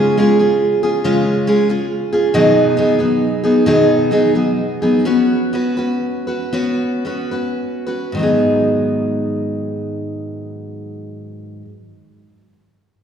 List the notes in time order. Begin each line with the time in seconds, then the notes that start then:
Already playing: C#3 G#3 C#4 F4 G#4
0.17 G#3 C#4 F4 G#4
0.39 C#4 F4 G#4
0.83 C#4 F4 G#4
1.04 C#3 G#3 C#4 F4 G#4
1.47 G#3 C#4 F4 G#4
1.69 C#4 F4 G#4
2.13 C#4 F4 G#4
2.34 B2 D#3 F#3 B3 D#4 G#4
2.77 F#3 B3 D#4 G#4
2.99 F#3 B3 D#4 G#4
3.44 F#3 B3 D#4 G#4
3.66 B2 D#3 F#3 B3 D#4 G#4
4.11 F#3 B3 D#4 G#4
4.35 F#3 B3 D#4 G#4
4.82 F#3 B3 D#4 G#4
5.05 B3 C#4 F#4 B4
5.53 B3 C#4 F#4 B4
5.77 C#4 F#4 B4
6.27 C#4 F#4 B4
6.53 B3 C#4 F#4 B4
7.05 B3 C#4 F#4 B4
7.31 C#4 F#4 B4
7.87 C#4 F#4 B4
8.12 G#2 D#3
8.17 F#3 B3 D#4
8.23 G#4